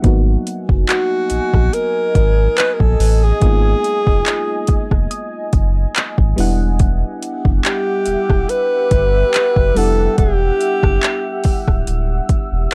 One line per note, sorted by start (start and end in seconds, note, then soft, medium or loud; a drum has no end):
0.02 0.37 G#1 loud
0.02 3.37 F#3 medium
0.02 3.38 A#3 medium
0.02 3.38 B3 medium
0.02 3.39 D#4 medium
0.02 6.34 D#5 medium
0.02 6.34 G#5 medium
0.02 kick loud
0.02 closed hi-hat medium
0.06 3.39 F#4 medium
0.47 closed hi-hat medium
0.69 0.84 F#1 medium
0.69 kick medium
0.89 1.75 F#4 medium
0.89 clap loud
0.89 closed hi-hat medium
1.30 1.40 A#1 soft
1.30 closed hi-hat medium
1.54 1.69 A#1 medium
1.54 kick medium
1.54 cross-stick medium
1.73 2.57 A#4 loud
1.73 closed hi-hat medium
2.15 2.48 G#1 medium
2.15 kick loud
2.15 closed hi-hat medium
2.58 2.75 B4 loud
2.58 clap loud
2.58 closed hi-hat medium
2.74 2.83 A#4 medium
2.80 2.95 A#1 loud
2.80 3.25 A4 loud
2.80 kick medium
3.00 3.32 A1 loud
3.00 open hi-hat medium
3.24 4.92 G#4 loud
3.40 3.74 G#1 loud
3.40 6.33 G#3 medium
3.40 6.34 A#3 medium
3.40 6.34 B3 medium
3.40 6.35 D#4 medium
3.40 kick loud
3.40 closed hi-hat medium
3.45 6.35 F4 medium
3.84 closed hi-hat medium
4.07 4.22 F1 medium
4.07 kick medium
4.26 clap loud
4.26 closed hi-hat medium
4.67 4.78 F1 soft
4.67 kick medium
4.67 closed hi-hat medium
4.91 5.06 F1 medium
4.91 kick medium
4.91 cross-stick medium
5.11 6.76 D#6 medium
5.11 closed hi-hat medium
5.53 5.86 F#1 medium
5.53 kick loud
5.53 closed hi-hat medium
5.96 clap loud
5.96 closed hi-hat medium
6.18 6.33 G#1 loud
6.18 kick medium
6.36 7.03 E1 loud
6.36 9.71 G3 medium
6.36 9.72 B3 medium
6.36 9.72 D4 medium
6.36 9.73 E4 medium
6.36 12.74 G4 medium
6.36 12.74 E5 medium
6.36 12.74 F#5 medium
6.36 open hi-hat medium
6.40 9.73 F#5 medium
6.79 kick loud
6.79 closed hi-hat medium
7.23 closed hi-hat medium
7.45 7.60 F#1 medium
7.45 kick loud
7.65 8.51 G4 loud
7.65 clap loud
7.65 closed hi-hat medium
8.06 8.16 E1 medium
8.06 closed hi-hat medium
8.30 8.45 E1 medium
8.30 kick medium
8.30 cross-stick medium
8.49 9.78 B4 loud
8.49 closed hi-hat medium
8.91 9.24 G1 medium
8.91 kick loud
8.91 closed hi-hat medium
9.34 clap loud
9.34 closed hi-hat medium
9.56 9.71 F#1 loud
9.56 kick medium
9.74 10.08 F1 loud
9.74 12.74 G3 medium
9.74 12.74 B3 medium
9.74 12.74 D4 medium
9.74 12.74 E4 medium
9.74 10.18 A4 loud
9.74 12.74 E6 medium
9.74 open hi-hat medium
9.78 12.69 F#5 medium
10.18 10.51 E1 loud
10.18 11.84 G4 medium
10.18 kick loud
10.18 closed hi-hat medium
10.61 closed hi-hat medium
10.83 10.98 F#1 medium
10.83 kick loud
10.83 cross-stick medium
11.03 clap loud
11.03 closed hi-hat medium
11.44 11.54 D1 medium
11.44 kick medium
11.44 open hi-hat medium
11.68 11.83 D1 medium
11.68 kick medium
11.68 cross-stick medium
11.87 12.20 D1 medium
11.87 closed hi-hat medium
12.29 12.38 E1 soft
12.29 kick loud
12.29 closed hi-hat medium
12.52 12.67 E1 medium